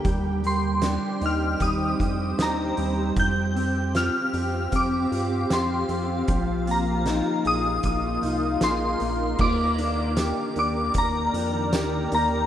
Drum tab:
CC |--------|--------|--------|x-------|
HH |xxxxxxxx|xxxxxxxx|xxxxxxxx|-xxxxxxx|
TB |--------|--------|--------|--x---x-|
SD |--o---o-|--o---o-|--o---o-|--o---o-|
BD |o---oo--|o---o---|o---o---|o---o---|